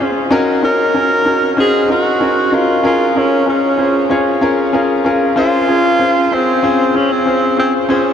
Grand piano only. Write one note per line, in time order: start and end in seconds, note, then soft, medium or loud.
0.00 0.31 C#4 medium
0.00 0.34 F4 medium
0.00 0.34 G#4 medium
0.00 0.34 C5 loud
0.00 0.34 D#5 medium
0.31 0.50 C#4 loud
0.31 0.51 D#4 loud
0.31 0.51 F#4 loud
0.31 0.51 A#4 loud
0.63 0.82 C#4 medium
0.63 0.82 D#4 medium
0.63 0.83 F#4 medium
0.63 0.83 C#5 medium
0.94 1.14 C#4 medium
0.94 1.14 D#4 medium
0.94 1.14 F#4 medium
0.94 1.14 A#4 medium
1.25 1.45 C#4 medium
1.25 1.45 D#4 medium
1.25 1.45 F#4 medium
1.25 1.46 A#4 medium
1.57 1.77 C#4 medium
1.57 1.77 D#4 medium
1.57 1.77 F#4 medium
1.57 1.77 C5 loud
1.88 2.08 C#4 medium
1.88 2.08 D#4 medium
1.88 2.09 F#4 medium
1.88 2.09 A#4 medium
2.20 2.40 C#4 medium
2.20 2.40 D#4 medium
2.20 2.40 F#4 medium
2.20 2.40 A#4 medium
2.52 2.71 C#4 medium
2.52 2.71 D#4 medium
2.52 2.72 F#4 medium
2.52 2.72 A#4 medium
2.83 3.03 C#4 medium
2.83 3.03 F4 medium
2.83 3.03 G#4 medium
2.83 3.04 A#4 loud
3.15 3.35 C#4 medium
3.15 3.35 F4 medium
3.15 3.35 G#4 medium
3.15 3.35 A#4 medium
3.46 3.66 C#4 medium
3.46 3.66 F4 medium
3.46 3.66 G#4 medium
3.46 3.67 A#4 medium
3.78 3.98 C#4 medium
3.78 3.98 F4 medium
3.78 3.98 G#4 medium
3.78 3.98 C5 medium
4.10 4.29 C#4 medium
4.10 4.30 F4 medium
4.10 4.30 G#4 medium
4.10 4.30 C#5 loud
4.41 4.61 C#4 loud
4.41 4.61 F4 medium
4.41 4.61 G#4 medium
4.41 4.62 A#4 loud
4.73 4.93 C#4 medium
4.73 4.93 F4 medium
4.73 4.93 G#4 medium
4.73 4.93 A#4 loud
5.05 5.24 C#4 medium
5.05 5.24 F4 medium
5.05 5.25 G#4 medium
5.05 5.25 A#4 loud
5.36 5.56 C#4 loud
5.36 5.56 F4 medium
5.36 5.56 G#4 medium
5.36 5.56 C5 loud
5.68 5.87 C#4 medium
5.68 5.88 F4 medium
5.68 5.88 G#4 medium
5.68 5.88 C5 medium
5.99 6.19 C#4 medium
5.99 6.19 F4 medium
5.99 6.19 G#4 medium
5.99 6.20 C5 medium
6.32 6.51 C#4 medium
6.32 6.51 F4 medium
6.32 6.51 G#4 medium
6.32 6.51 C5 medium
6.63 6.82 C#4 medium
6.63 6.83 F4 medium
6.63 6.83 G#4 medium
6.63 6.83 C5 loud
6.94 7.14 C#4 medium
6.94 7.14 F4 medium
6.94 7.14 G#4 medium
6.94 7.14 C5 medium
7.26 7.45 C#4 medium
7.26 7.45 F4 medium
7.26 7.46 G#4 medium
7.26 7.46 C5 medium
7.57 7.77 C#4 medium
7.57 7.77 F4 medium
7.57 7.77 G#4 medium
7.57 7.77 C5 medium
7.89 8.08 C#4 loud
7.89 8.09 F4 medium
7.89 8.09 G#4 medium
7.89 8.09 C5 loud